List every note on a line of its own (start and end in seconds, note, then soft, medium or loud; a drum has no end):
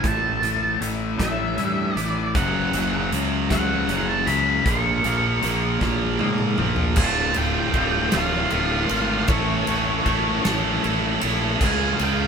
0.04 0.40 A1 medium
0.04 0.40 A2 loud
0.04 0.41 E3 loud
0.04 0.42 A3 loud
0.04 0.79 A5 medium
0.04 kick loud
0.04 closed hi-hat medium
0.42 0.79 A1 medium
0.42 0.80 A2 medium
0.42 0.80 E3 medium
0.42 0.81 A3 medium
0.42 closed hi-hat medium
0.80 1.18 A1 medium
0.80 1.19 A2 medium
0.80 1.19 E3 medium
0.80 1.19 A3 medium
0.80 1.56 C#4 medium
0.80 closed hi-hat medium
1.19 1.56 A1 medium
1.19 1.58 A2 medium
1.19 1.58 E3 medium
1.19 1.59 A3 medium
1.19 1.96 E5 medium
1.19 kick medium
1.19 snare loud
1.19 closed hi-hat medium
1.57 1.94 G2 medium
1.57 1.95 A2 medium
1.57 1.96 E3 medium
1.57 1.96 A3 medium
1.57 2.35 C#4 medium
1.57 closed hi-hat medium
1.96 2.37 A1 medium
1.96 2.33 A2 medium
1.96 2.33 E3 medium
1.96 2.33 A3 medium
1.96 2.35 E4 medium
1.96 2.31 D5 medium
1.96 closed hi-hat medium
2.35 2.72 F#1 medium
2.35 2.73 F#2 medium
2.35 2.74 C#3 loud
2.35 2.74 F#3 loud
2.35 3.08 F#5 loud
2.35 kick loud
2.35 closed hi-hat medium
2.73 3.10 F#1 medium
2.73 3.11 F#2 medium
2.73 3.12 C#3 medium
2.73 3.12 F#3 loud
2.73 closed hi-hat medium
3.11 3.85 C#2 medium
3.11 3.50 F#2 medium
3.11 3.50 C#3 medium
3.11 3.50 F#3 loud
3.11 closed hi-hat medium
3.50 3.88 F#2 medium
3.50 3.89 C#3 medium
3.50 3.89 F#3 medium
3.50 4.05 F#5 medium
3.50 kick medium
3.50 snare loud
3.50 closed hi-hat medium
3.88 4.25 F#1 medium
3.88 4.26 F#2 medium
3.88 4.26 C#3 medium
3.88 4.26 F#3 medium
3.88 closed hi-hat medium
4.09 4.29 A5 medium
4.26 4.64 C#2 loud
4.26 4.64 F#2 medium
4.26 4.64 C#3 medium
4.26 4.64 F#3 medium
4.26 4.63 B5 medium
4.26 closed hi-hat medium
4.65 5.02 A#1 loud
4.65 5.03 A#2 loud
4.65 5.04 F3 medium
4.65 5.04 A#3 loud
4.65 6.16 C#6 medium
4.65 kick loud
4.65 closed hi-hat medium
5.04 5.41 A#1 loud
5.04 5.41 A#2 medium
5.04 5.41 F3 medium
5.04 5.41 A#3 loud
5.04 closed hi-hat medium
5.42 5.80 A#1 medium
5.42 5.80 A#2 medium
5.42 5.80 F3 loud
5.42 5.81 A#3 medium
5.42 closed hi-hat medium
5.81 6.18 A#1 loud
5.81 6.18 A#2 medium
5.81 6.19 F3 medium
5.81 6.20 A#3 medium
5.81 kick medium
5.81 snare medium
6.19 6.57 G#2 medium
6.19 6.57 A#2 medium
6.19 6.58 F3 medium
6.19 6.58 A#3 loud
6.19 high tom medium
6.38 mid tom medium
6.58 6.96 A#1 medium
6.58 6.95 A#2 medium
6.58 6.95 F3 medium
6.58 6.95 A#3 medium
6.58 mid tom loud
6.76 floor tom medium
6.96 7.30 D1 medium
6.96 7.74 D2 loud
6.96 7.73 A2 medium
6.96 7.36 D3 medium
6.96 7.37 A3 loud
6.96 7.34 F4 loud
6.96 7.37 A5 loud
6.96 kick loud
6.96 crash loud
7.34 7.69 D1 medium
7.34 7.74 D3 medium
7.34 7.75 A3 medium
7.34 7.74 F4 medium
7.34 8.16 G5 medium
7.34 ride medium
7.74 8.07 D1 medium
7.74 8.49 A2 medium
7.74 8.13 D3 medium
7.74 8.12 A3 medium
7.74 8.11 F4 medium
7.74 kick medium
7.74 ride medium
8.12 8.46 D1 medium
8.12 8.50 D3 medium
8.12 8.51 A3 medium
8.12 8.52 F4 medium
8.12 9.28 F5 loud
8.12 snare loud
8.12 ride loud
8.50 8.85 D1 medium
8.50 9.26 A2 medium
8.50 8.91 D3 medium
8.50 8.90 A3 medium
8.50 8.89 F4 medium
8.50 ride medium
8.89 9.23 G#1 medium
8.89 9.27 D3 medium
8.89 9.27 A3 medium
8.89 9.27 F4 medium
8.89 ride medium
9.28 9.61 A1 medium
9.28 10.06 A2 loud
9.28 10.06 E3 medium
9.28 9.67 A3 loud
9.28 9.67 C#4 loud
9.28 9.67 E4 loud
9.28 9.66 A4 loud
9.28 10.41 C#5 medium
9.28 kick loud
9.28 ride medium
9.67 10.00 A1 medium
9.67 10.04 A3 medium
9.67 10.06 C#4 medium
9.67 10.05 E4 medium
9.67 10.06 A4 medium
9.67 ride medium
10.05 10.38 A1 medium
10.05 10.45 A3 medium
10.05 10.45 C#4 medium
10.05 10.44 E4 medium
10.05 10.43 A4 medium
10.05 kick medium
10.05 ride medium
10.44 10.78 A1 medium
10.44 10.81 A3 medium
10.44 10.83 C#4 medium
10.44 10.83 E4 medium
10.44 10.83 A4 medium
10.44 snare loud
10.44 ride medium
10.82 11.17 A1 loud
10.82 11.22 A3 medium
10.82 11.22 C#4 medium
10.82 11.21 E4 medium
10.82 11.20 A4 medium
10.82 ride medium
11.21 11.55 A#1 medium
11.21 11.59 A3 medium
11.21 11.60 C#4 medium
11.21 11.58 E4 medium
11.21 11.58 A4 medium
11.21 ride medium
11.59 11.94 C#2 loud
11.59 12.27 C#3 loud
11.59 12.27 G#3 loud
11.59 12.00 C#4 loud
11.59 12.00 F4 loud
11.59 11.98 G#4 loud
11.59 kick loud
11.59 crash medium
11.64 11.94 G#5 medium
11.94 12.00 F5 medium
11.99 12.27 C#2 medium
11.99 12.27 C#4 medium
11.99 12.27 F4 medium
11.99 12.27 G#4 medium
11.99 12.27 G5 medium
11.99 ride medium